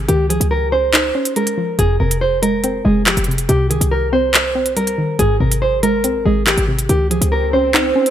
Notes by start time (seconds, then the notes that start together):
0.08 C#2 D#3 G4, closed hi-hat
0.30 F3 G#4, closed hi-hat
0.40 C#2, closed hi-hat
0.51 A#4
0.72 C#4 C5
0.93 D#4, clap
1.15 C#4
1.25 closed hi-hat
1.36 G#3 A#4, closed hi-hat
1.47 closed hi-hat
1.57 F3
1.79 F1 F2 G#4, closed hi-hat
2.00 F1 C3 A#4
2.11 closed hi-hat
2.21 C5
2.42 G#3 A#4, closed hi-hat
2.64 C4, closed hi-hat
2.85 F1 G#3 G#4
3.06 F3 G4, clap, closed hi-hat
3.17 F1, closed hi-hat
3.24 C3, closed hi-hat
3.31 closed hi-hat
3.38 closed hi-hat
3.49 C2 C3 G4, closed hi-hat
3.70 C#2 D#3 G#4, closed hi-hat
3.81 C2, closed hi-hat
3.91 A#4
4.13 C4 C5
4.34 C5, clap
4.55 C4
4.66 closed hi-hat
4.77 G3 A#4, closed hi-hat
4.87 closed hi-hat
4.98 D#3
5.19 G#1 G#2 G#4, closed hi-hat
5.40 G#1 C3 A#4
5.52 closed hi-hat
5.62 C5
5.83 G#3 A#4, closed hi-hat
6.04 C2 C4, closed hi-hat
6.15 G#1
6.25 G#1 G#3 G#4
6.47 D#3 G4, clap, closed hi-hat
6.57 G#1, closed hi-hat
6.68 C3
6.79 closed hi-hat
6.89 C#2 D#3 G4, closed hi-hat, swell
7.11 F3 G#4, closed hi-hat
7.21 C#2, closed hi-hat
7.32 A#4
7.53 C#4 C5
7.74 D#4, clap
7.96 C#4
8.06 closed hi-hat